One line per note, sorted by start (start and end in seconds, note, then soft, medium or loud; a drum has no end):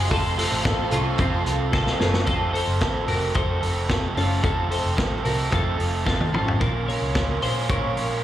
0.00 0.12 F#3 soft
0.00 0.12 G#3 medium
0.00 0.12 C4 medium
0.00 0.11 F4 medium
0.00 0.11 G#4 medium
0.00 2.23 C6 loud
0.11 0.46 F1 loud
0.11 0.38 F2 medium
0.11 0.38 C3 medium
0.11 0.39 F3 loud
0.11 0.39 A3 loud
0.11 0.38 C4 loud
0.11 0.38 F4 medium
0.11 0.37 A4 loud
0.11 2.25 A4 medium
0.11 0.37 A4 loud
0.11 2.25 C5 medium
0.11 2.25 F5 medium
0.11 kick loud
0.11 hi-hat pedal medium
0.11 open hi-hat medium
0.38 0.63 F3 medium
0.38 0.65 A3 medium
0.38 0.65 C4 medium
0.38 0.90 F4 medium
0.38 0.65 A4 medium
0.38 0.89 A4 medium
0.38 hi-hat pedal medium
0.38 open hi-hat medium
0.52 0.63 A1 medium
0.64 0.88 A1 medium
0.64 0.92 F3 medium
0.64 0.92 A3 medium
0.64 0.91 C4 medium
0.64 0.89 A4 medium
0.64 kick loud
0.64 snare loud
0.64 hi-hat pedal medium
0.64 open hi-hat medium
0.91 1.15 C2 medium
0.91 1.18 F3 soft
0.91 1.18 A3 medium
0.91 1.19 C4 medium
0.91 1.19 C#4 soft
0.91 1.18 F4 medium
0.91 1.18 A4 medium
0.91 hi-hat pedal medium
0.91 open hi-hat medium
1.18 1.45 F2 medium
1.18 1.42 F2 loud
1.18 1.46 C3 medium
1.18 1.46 F3 loud
1.18 1.46 A3 loud
1.18 1.70 C4 medium
1.18 1.45 C4 loud
1.18 1.70 F4 medium
1.18 1.44 A4 loud
1.18 kick loud
1.18 hi-hat pedal medium
1.18 open hi-hat medium
1.45 1.92 C2 loud
1.45 1.72 F3 soft
1.45 1.73 A3 soft
1.45 1.73 C4 medium
1.45 1.73 A4 medium
1.45 hi-hat pedal medium
1.45 open hi-hat medium
1.73 2.00 F3 medium
1.73 2.01 A3 medium
1.73 2.00 C4 medium
1.73 1.98 F4 medium
1.73 2.00 A4 medium
1.73 1.99 A4 medium
1.73 kick loud
1.73 snare medium
1.87 snare medium
1.99 2.23 F#1 medium
1.99 2.26 F3 soft
1.99 2.27 A3 medium
1.99 2.27 C4 medium
1.99 2.27 C#4 medium
1.99 2.26 F4 medium
1.99 2.27 A4 medium
1.99 snare medium
2.14 snare loud
2.26 2.62 F1 loud
2.26 2.54 F2 medium
2.26 2.54 C3 medium
2.26 2.54 F3 medium
2.26 2.55 A3 medium
2.26 2.54 C4 medium
2.26 2.54 F4 medium
2.26 2.53 A4 medium
2.26 2.52 A4 medium
2.26 kick loud
2.26 closed hi-hat medium
2.53 2.80 F3 soft
2.53 2.81 A3 medium
2.53 2.81 C4 medium
2.53 2.81 A4 medium
2.53 3.05 A4 medium
2.53 3.05 C5 medium
2.53 open hi-hat medium
2.67 2.79 F#1 medium
2.80 3.04 A1 medium
2.80 3.08 F2 medium
2.80 3.08 C3 medium
2.80 3.08 F3 medium
2.80 3.08 A3 medium
2.80 3.07 C4 medium
2.80 3.05 A4 medium
2.80 kick loud
2.80 snare loud
2.80 closed hi-hat medium
3.06 3.31 F1 medium
3.06 3.33 F3 soft
3.06 3.34 A3 soft
3.06 3.35 C4 medium
3.06 3.36 F#4 medium
3.06 3.34 A4 medium
3.06 3.35 A#4 medium
3.06 open hi-hat medium
3.34 3.58 F2 medium
3.34 3.62 F3 medium
3.34 3.62 A3 medium
3.34 3.61 C4 medium
3.34 4.13 A4 medium
3.34 3.60 A4 medium
3.34 4.12 C5 medium
3.34 kick loud
3.34 closed hi-hat medium
3.61 4.09 F1 medium
3.61 3.88 F3 soft
3.61 3.89 A3 soft
3.61 3.89 C4 soft
3.61 3.89 A4 medium
3.61 open hi-hat medium
3.88 4.16 F2 medium
3.88 4.16 C3 medium
3.88 4.16 F3 medium
3.88 4.16 A3 medium
3.88 4.15 C4 medium
3.88 4.14 A4 medium
3.88 kick loud
3.88 snare loud
3.88 closed hi-hat medium
4.15 4.40 F#1 medium
4.15 4.42 F3 soft
4.15 4.42 A3 medium
4.15 4.43 C4 medium
4.15 4.44 C#4 soft
4.15 4.43 F4 medium
4.15 4.43 A4 medium
4.15 open hi-hat medium
4.42 4.78 F1 medium
4.42 4.70 F2 medium
4.42 4.70 C3 medium
4.42 4.71 F3 medium
4.42 4.70 A3 medium
4.42 4.69 C4 medium
4.42 4.71 F4 medium
4.42 4.71 A4 medium
4.42 4.68 A4 medium
4.42 kick loud
4.42 closed hi-hat medium
4.69 4.96 F3 medium
4.69 4.96 A3 soft
4.69 4.97 C4 medium
4.69 4.97 A4 medium
4.69 5.22 A4 medium
4.69 5.22 C5 medium
4.69 open hi-hat medium
4.84 4.96 F1 medium
4.96 5.21 A1 loud
4.96 5.24 F2 medium
4.96 5.24 C3 medium
4.96 5.24 F3 medium
4.96 5.25 A3 medium
4.96 5.23 C4 medium
4.96 5.22 A4 medium
4.96 kick loud
4.96 snare loud
4.96 closed hi-hat medium
5.23 5.48 C2 medium
5.23 5.49 F3 soft
5.23 5.50 A3 soft
5.23 5.51 C4 soft
5.23 5.52 F#4 soft
5.23 5.51 A4 medium
5.23 5.52 A#4 medium
5.23 open hi-hat medium
5.50 5.75 F2 loud
5.50 5.78 F3 medium
5.50 5.78 A3 medium
5.50 5.78 C4 medium
5.50 6.03 F4 medium
5.50 6.03 A4 medium
5.50 5.76 A4 medium
5.50 kick loud
5.50 closed hi-hat medium
5.78 6.25 F1 medium
5.78 6.05 F3 soft
5.78 6.05 A3 soft
5.78 6.06 C4 soft
5.78 6.05 A4 soft
5.78 open hi-hat medium
6.05 6.33 F2 medium
6.05 6.33 C3 medium
6.05 6.33 F3 medium
6.05 6.33 A3 medium
6.05 6.33 C4 medium
6.05 6.34 C4 medium
6.05 6.33 F4 medium
6.05 6.31 A4 medium
6.05 kick medium
6.05 snare medium
6.21 high tom medium
6.32 6.57 A1 medium
6.32 6.59 F3 soft
6.32 6.60 A3 soft
6.32 6.61 C4 medium
6.32 6.61 C#4 soft
6.32 6.60 F4 medium
6.32 6.60 A4 medium
6.32 mid tom medium
6.48 floor tom medium
6.60 6.95 A#1 loud
6.60 6.87 A#2 medium
6.60 6.88 F3 medium
6.60 6.88 A#3 medium
6.60 6.87 C#4 medium
6.60 6.88 F4 medium
6.60 6.85 F4 loud
6.60 6.87 A#4 medium
6.60 8.24 A#4 medium
6.60 8.24 C#5 medium
6.60 8.24 F5 medium
6.60 8.24 C#6 medium
6.60 kick loud
6.60 closed hi-hat medium
6.86 7.14 A#3 soft
6.86 7.15 C#4 medium
6.86 7.14 F4 medium
6.86 7.40 A#4 medium
6.86 7.39 C#5 medium
6.86 open hi-hat medium
7.02 7.13 C2 medium
7.14 7.38 C#2 loud
7.14 7.41 F3 medium
7.14 7.42 A#3 medium
7.14 7.41 C#4 medium
7.14 7.39 F4 medium
7.14 kick loud
7.14 snare medium
7.14 closed hi-hat medium
7.41 7.65 A#1 medium
7.41 7.69 A#3 soft
7.41 7.69 C#4 soft
7.41 7.68 F4 medium
7.41 7.70 G#4 soft
7.41 7.69 C5 medium
7.41 open hi-hat medium
7.69 7.96 A#2 medium
7.69 7.92 A#2 medium
7.69 7.97 F3 medium
7.69 7.96 A#3 medium
7.69 7.96 C#4 medium
7.69 7.94 F4 medium
7.69 8.24 A#4 medium
7.69 8.24 C#5 medium
7.69 kick loud
7.69 closed hi-hat medium
7.95 8.24 A#1 medium
7.95 8.22 A#3 soft
7.95 8.23 C#4 soft
7.95 8.23 F4 soft
7.95 open hi-hat medium